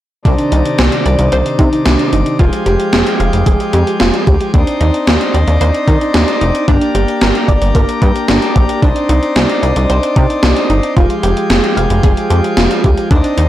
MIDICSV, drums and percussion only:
0, 0, Header, 1, 2, 480
1, 0, Start_track
1, 0, Key_signature, -3, "minor"
1, 0, Tempo, 535714
1, 226, Time_signature, 4, 2, 24, 8
1, 12084, End_track
2, 0, Start_track
2, 0, Title_t, "Drums"
2, 226, Note_on_c, 9, 36, 109
2, 226, Note_on_c, 9, 42, 61
2, 315, Note_off_c, 9, 36, 0
2, 315, Note_off_c, 9, 42, 0
2, 345, Note_on_c, 9, 42, 56
2, 434, Note_off_c, 9, 42, 0
2, 466, Note_on_c, 9, 42, 77
2, 555, Note_off_c, 9, 42, 0
2, 587, Note_on_c, 9, 42, 46
2, 676, Note_off_c, 9, 42, 0
2, 703, Note_on_c, 9, 42, 71
2, 705, Note_on_c, 9, 38, 112
2, 793, Note_off_c, 9, 42, 0
2, 795, Note_off_c, 9, 38, 0
2, 826, Note_on_c, 9, 42, 51
2, 916, Note_off_c, 9, 42, 0
2, 947, Note_on_c, 9, 42, 70
2, 1036, Note_off_c, 9, 42, 0
2, 1063, Note_on_c, 9, 42, 58
2, 1153, Note_off_c, 9, 42, 0
2, 1183, Note_on_c, 9, 42, 82
2, 1273, Note_off_c, 9, 42, 0
2, 1306, Note_on_c, 9, 42, 54
2, 1396, Note_off_c, 9, 42, 0
2, 1423, Note_on_c, 9, 42, 78
2, 1424, Note_on_c, 9, 36, 86
2, 1513, Note_off_c, 9, 42, 0
2, 1514, Note_off_c, 9, 36, 0
2, 1547, Note_on_c, 9, 42, 49
2, 1637, Note_off_c, 9, 42, 0
2, 1663, Note_on_c, 9, 38, 103
2, 1666, Note_on_c, 9, 42, 77
2, 1752, Note_off_c, 9, 38, 0
2, 1756, Note_off_c, 9, 42, 0
2, 1786, Note_on_c, 9, 42, 49
2, 1875, Note_off_c, 9, 42, 0
2, 1906, Note_on_c, 9, 42, 61
2, 1995, Note_off_c, 9, 42, 0
2, 2026, Note_on_c, 9, 42, 51
2, 2116, Note_off_c, 9, 42, 0
2, 2144, Note_on_c, 9, 42, 63
2, 2145, Note_on_c, 9, 36, 107
2, 2234, Note_off_c, 9, 42, 0
2, 2235, Note_off_c, 9, 36, 0
2, 2265, Note_on_c, 9, 42, 57
2, 2354, Note_off_c, 9, 42, 0
2, 2384, Note_on_c, 9, 42, 76
2, 2474, Note_off_c, 9, 42, 0
2, 2505, Note_on_c, 9, 42, 48
2, 2595, Note_off_c, 9, 42, 0
2, 2623, Note_on_c, 9, 42, 73
2, 2625, Note_on_c, 9, 38, 112
2, 2712, Note_off_c, 9, 42, 0
2, 2714, Note_off_c, 9, 38, 0
2, 2747, Note_on_c, 9, 42, 51
2, 2837, Note_off_c, 9, 42, 0
2, 2868, Note_on_c, 9, 42, 70
2, 2957, Note_off_c, 9, 42, 0
2, 2985, Note_on_c, 9, 42, 60
2, 3075, Note_off_c, 9, 42, 0
2, 3103, Note_on_c, 9, 36, 93
2, 3105, Note_on_c, 9, 42, 83
2, 3193, Note_off_c, 9, 36, 0
2, 3195, Note_off_c, 9, 42, 0
2, 3226, Note_on_c, 9, 42, 55
2, 3316, Note_off_c, 9, 42, 0
2, 3344, Note_on_c, 9, 42, 76
2, 3433, Note_off_c, 9, 42, 0
2, 3469, Note_on_c, 9, 42, 49
2, 3558, Note_off_c, 9, 42, 0
2, 3583, Note_on_c, 9, 38, 101
2, 3587, Note_on_c, 9, 42, 76
2, 3673, Note_off_c, 9, 38, 0
2, 3676, Note_off_c, 9, 42, 0
2, 3706, Note_on_c, 9, 42, 51
2, 3796, Note_off_c, 9, 42, 0
2, 3827, Note_on_c, 9, 42, 60
2, 3828, Note_on_c, 9, 36, 94
2, 3916, Note_off_c, 9, 42, 0
2, 3918, Note_off_c, 9, 36, 0
2, 3947, Note_on_c, 9, 42, 52
2, 4037, Note_off_c, 9, 42, 0
2, 4066, Note_on_c, 9, 36, 113
2, 4067, Note_on_c, 9, 42, 64
2, 4156, Note_off_c, 9, 36, 0
2, 4157, Note_off_c, 9, 42, 0
2, 4186, Note_on_c, 9, 42, 56
2, 4276, Note_off_c, 9, 42, 0
2, 4306, Note_on_c, 9, 42, 77
2, 4396, Note_off_c, 9, 42, 0
2, 4427, Note_on_c, 9, 42, 47
2, 4516, Note_off_c, 9, 42, 0
2, 4545, Note_on_c, 9, 42, 73
2, 4547, Note_on_c, 9, 38, 110
2, 4634, Note_off_c, 9, 42, 0
2, 4636, Note_off_c, 9, 38, 0
2, 4668, Note_on_c, 9, 42, 52
2, 4757, Note_off_c, 9, 42, 0
2, 4789, Note_on_c, 9, 42, 68
2, 4878, Note_off_c, 9, 42, 0
2, 4906, Note_on_c, 9, 42, 57
2, 4995, Note_off_c, 9, 42, 0
2, 5026, Note_on_c, 9, 42, 81
2, 5115, Note_off_c, 9, 42, 0
2, 5147, Note_on_c, 9, 42, 54
2, 5237, Note_off_c, 9, 42, 0
2, 5265, Note_on_c, 9, 36, 87
2, 5265, Note_on_c, 9, 42, 78
2, 5354, Note_off_c, 9, 36, 0
2, 5354, Note_off_c, 9, 42, 0
2, 5388, Note_on_c, 9, 42, 48
2, 5477, Note_off_c, 9, 42, 0
2, 5503, Note_on_c, 9, 38, 102
2, 5507, Note_on_c, 9, 42, 76
2, 5593, Note_off_c, 9, 38, 0
2, 5596, Note_off_c, 9, 42, 0
2, 5627, Note_on_c, 9, 42, 51
2, 5716, Note_off_c, 9, 42, 0
2, 5746, Note_on_c, 9, 42, 63
2, 5836, Note_off_c, 9, 42, 0
2, 5867, Note_on_c, 9, 42, 53
2, 5956, Note_off_c, 9, 42, 0
2, 5985, Note_on_c, 9, 36, 108
2, 5985, Note_on_c, 9, 42, 64
2, 6075, Note_off_c, 9, 36, 0
2, 6075, Note_off_c, 9, 42, 0
2, 6106, Note_on_c, 9, 42, 57
2, 6195, Note_off_c, 9, 42, 0
2, 6226, Note_on_c, 9, 42, 77
2, 6316, Note_off_c, 9, 42, 0
2, 6347, Note_on_c, 9, 42, 47
2, 6436, Note_off_c, 9, 42, 0
2, 6463, Note_on_c, 9, 42, 70
2, 6465, Note_on_c, 9, 38, 111
2, 6552, Note_off_c, 9, 42, 0
2, 6555, Note_off_c, 9, 38, 0
2, 6587, Note_on_c, 9, 42, 52
2, 6676, Note_off_c, 9, 42, 0
2, 6705, Note_on_c, 9, 36, 87
2, 6707, Note_on_c, 9, 42, 70
2, 6794, Note_off_c, 9, 36, 0
2, 6797, Note_off_c, 9, 42, 0
2, 6824, Note_on_c, 9, 42, 59
2, 6914, Note_off_c, 9, 42, 0
2, 6943, Note_on_c, 9, 36, 92
2, 6945, Note_on_c, 9, 42, 85
2, 7033, Note_off_c, 9, 36, 0
2, 7035, Note_off_c, 9, 42, 0
2, 7067, Note_on_c, 9, 42, 52
2, 7157, Note_off_c, 9, 42, 0
2, 7184, Note_on_c, 9, 42, 75
2, 7185, Note_on_c, 9, 36, 90
2, 7274, Note_off_c, 9, 42, 0
2, 7275, Note_off_c, 9, 36, 0
2, 7308, Note_on_c, 9, 42, 49
2, 7398, Note_off_c, 9, 42, 0
2, 7423, Note_on_c, 9, 38, 102
2, 7426, Note_on_c, 9, 42, 76
2, 7512, Note_off_c, 9, 38, 0
2, 7516, Note_off_c, 9, 42, 0
2, 7547, Note_on_c, 9, 42, 52
2, 7636, Note_off_c, 9, 42, 0
2, 7667, Note_on_c, 9, 42, 60
2, 7669, Note_on_c, 9, 36, 91
2, 7757, Note_off_c, 9, 42, 0
2, 7758, Note_off_c, 9, 36, 0
2, 7787, Note_on_c, 9, 42, 52
2, 7877, Note_off_c, 9, 42, 0
2, 7907, Note_on_c, 9, 36, 113
2, 7907, Note_on_c, 9, 42, 65
2, 7996, Note_off_c, 9, 36, 0
2, 7997, Note_off_c, 9, 42, 0
2, 8026, Note_on_c, 9, 42, 58
2, 8116, Note_off_c, 9, 42, 0
2, 8147, Note_on_c, 9, 42, 80
2, 8236, Note_off_c, 9, 42, 0
2, 8267, Note_on_c, 9, 42, 48
2, 8356, Note_off_c, 9, 42, 0
2, 8385, Note_on_c, 9, 42, 72
2, 8387, Note_on_c, 9, 38, 106
2, 8474, Note_off_c, 9, 42, 0
2, 8476, Note_off_c, 9, 38, 0
2, 8507, Note_on_c, 9, 42, 53
2, 8597, Note_off_c, 9, 42, 0
2, 8629, Note_on_c, 9, 42, 71
2, 8719, Note_off_c, 9, 42, 0
2, 8746, Note_on_c, 9, 42, 59
2, 8836, Note_off_c, 9, 42, 0
2, 8867, Note_on_c, 9, 42, 82
2, 8957, Note_off_c, 9, 42, 0
2, 8989, Note_on_c, 9, 42, 56
2, 9078, Note_off_c, 9, 42, 0
2, 9106, Note_on_c, 9, 36, 89
2, 9106, Note_on_c, 9, 42, 76
2, 9195, Note_off_c, 9, 36, 0
2, 9195, Note_off_c, 9, 42, 0
2, 9230, Note_on_c, 9, 42, 49
2, 9319, Note_off_c, 9, 42, 0
2, 9343, Note_on_c, 9, 38, 103
2, 9347, Note_on_c, 9, 42, 79
2, 9433, Note_off_c, 9, 38, 0
2, 9437, Note_off_c, 9, 42, 0
2, 9466, Note_on_c, 9, 42, 52
2, 9555, Note_off_c, 9, 42, 0
2, 9586, Note_on_c, 9, 42, 62
2, 9676, Note_off_c, 9, 42, 0
2, 9707, Note_on_c, 9, 42, 51
2, 9796, Note_off_c, 9, 42, 0
2, 9826, Note_on_c, 9, 36, 110
2, 9826, Note_on_c, 9, 42, 66
2, 9915, Note_off_c, 9, 42, 0
2, 9916, Note_off_c, 9, 36, 0
2, 9945, Note_on_c, 9, 42, 54
2, 10035, Note_off_c, 9, 42, 0
2, 10065, Note_on_c, 9, 42, 77
2, 10155, Note_off_c, 9, 42, 0
2, 10186, Note_on_c, 9, 42, 49
2, 10276, Note_off_c, 9, 42, 0
2, 10303, Note_on_c, 9, 42, 72
2, 10305, Note_on_c, 9, 38, 113
2, 10393, Note_off_c, 9, 42, 0
2, 10395, Note_off_c, 9, 38, 0
2, 10427, Note_on_c, 9, 42, 52
2, 10517, Note_off_c, 9, 42, 0
2, 10549, Note_on_c, 9, 42, 72
2, 10639, Note_off_c, 9, 42, 0
2, 10665, Note_on_c, 9, 42, 58
2, 10754, Note_off_c, 9, 42, 0
2, 10783, Note_on_c, 9, 36, 99
2, 10785, Note_on_c, 9, 42, 83
2, 10873, Note_off_c, 9, 36, 0
2, 10875, Note_off_c, 9, 42, 0
2, 10907, Note_on_c, 9, 42, 54
2, 10996, Note_off_c, 9, 42, 0
2, 11025, Note_on_c, 9, 42, 74
2, 11114, Note_off_c, 9, 42, 0
2, 11149, Note_on_c, 9, 42, 51
2, 11239, Note_off_c, 9, 42, 0
2, 11263, Note_on_c, 9, 38, 105
2, 11266, Note_on_c, 9, 42, 77
2, 11352, Note_off_c, 9, 38, 0
2, 11356, Note_off_c, 9, 42, 0
2, 11386, Note_on_c, 9, 42, 50
2, 11476, Note_off_c, 9, 42, 0
2, 11505, Note_on_c, 9, 42, 61
2, 11508, Note_on_c, 9, 36, 92
2, 11595, Note_off_c, 9, 42, 0
2, 11597, Note_off_c, 9, 36, 0
2, 11626, Note_on_c, 9, 42, 54
2, 11715, Note_off_c, 9, 42, 0
2, 11744, Note_on_c, 9, 42, 63
2, 11745, Note_on_c, 9, 36, 107
2, 11834, Note_off_c, 9, 36, 0
2, 11834, Note_off_c, 9, 42, 0
2, 11863, Note_on_c, 9, 42, 56
2, 11953, Note_off_c, 9, 42, 0
2, 11984, Note_on_c, 9, 42, 78
2, 12074, Note_off_c, 9, 42, 0
2, 12084, End_track
0, 0, End_of_file